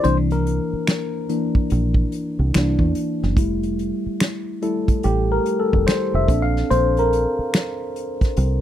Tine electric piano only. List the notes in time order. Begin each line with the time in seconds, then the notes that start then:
0.03 E3 A#3 D4 C5
0.32 A#4
1.29 E3 A#3 D4
2.54 E3 A#3 D4
3.37 G3 A3 E4
4.62 G3 A3 E4 A4
5.04 G4
5.32 A#4
5.60 A4
5.87 C5
6.15 E5
6.28 C4 D4 A4
6.42 F5
6.71 C5
6.99 A#4